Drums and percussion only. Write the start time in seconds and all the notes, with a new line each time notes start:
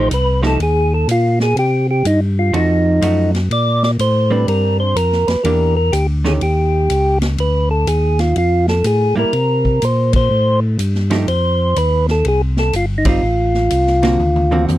0.11 hi-hat pedal, ride
0.43 snare
0.60 ride
1.09 hi-hat pedal, ride
1.40 snare
1.57 ride
2.05 hi-hat pedal, ride
2.54 ride
3.02 hi-hat pedal, ride
3.35 snare, ride
3.51 ride
3.83 snare
3.99 hi-hat pedal, ride
4.48 ride
4.96 hi-hat pedal, ride
5.12 snare
5.28 snare, ride
5.45 ride
5.93 hi-hat pedal, ride
6.25 snare
6.41 ride
6.90 hi-hat pedal, ride
7.22 snare, ride
7.38 ride
7.87 hi-hat pedal, ride
8.19 snare, ride
8.36 ride
8.68 snare
8.84 hi-hat pedal, ride
9.33 ride
9.65 kick
9.82 hi-hat pedal, ride
10.13 kick, ride
10.79 hi-hat pedal, ride
10.95 snare
11.11 snare, ride
11.28 ride
11.76 hi-hat pedal, ride
12.08 snare
12.25 ride
12.57 snare
12.73 hi-hat pedal, ride
13.05 kick, ride
13.54 snare
13.70 hi-hat pedal, ride
13.87 snare
14.03 snare, ride
14.19 mid tom
14.36 mid tom
14.52 mid tom
14.68 hi-hat pedal, mid tom